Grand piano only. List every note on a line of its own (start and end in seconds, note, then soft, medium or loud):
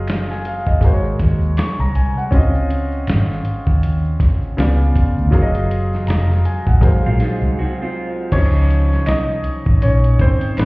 0.00 0.79 F#3 medium
0.00 0.79 F4 medium
0.00 0.80 G#4 medium
0.00 0.80 A#4 medium
0.00 0.67 D#5 medium
0.30 0.45 G#5 medium
0.47 0.66 F5 medium
0.67 1.02 D#5 medium
0.81 2.28 G#3 medium
0.81 2.29 F#4 medium
0.81 2.30 A#4 medium
0.86 0.91 C5 medium
0.93 2.34 C#5 medium
1.58 1.78 C#6 medium
1.80 1.94 A#5 medium
1.95 2.16 G#5 medium
2.18 2.52 F#5 medium
2.31 4.53 C4 medium
2.31 4.52 C#4 medium
2.31 4.54 F4 medium
2.35 4.55 D#5 medium
4.57 5.32 C#3 medium
4.57 5.32 B3 medium
4.57 5.30 F4 medium
4.57 5.33 D5 medium
5.31 6.78 F#3 medium
5.31 6.79 F4 medium
5.31 6.79 G#4 medium
5.31 6.80 A#4 medium
5.35 5.41 C#5 medium
5.42 6.84 D#5 medium
6.08 6.43 A#5 medium
6.45 6.66 G#5 medium
6.68 7.03 F#5 medium
6.81 8.29 F#3 medium
6.81 8.28 G#3 medium
6.81 8.29 A#4 medium
6.81 8.30 C5 medium
6.85 8.31 F5 medium
8.32 8.84 F3 medium
8.32 9.04 C#4 medium
8.32 8.85 D#4 medium
8.32 8.85 C5 medium
8.32 9.09 C#5 loud
9.07 9.79 D#4 medium
9.07 9.84 D#5 loud
9.83 10.18 C#4 medium
9.83 10.17 C#5 medium
10.21 10.56 C4 medium
10.21 10.59 C5 medium
10.58 10.65 G3 medium
10.58 10.65 B3 medium
10.58 10.65 C#4 medium
10.58 10.65 B4 medium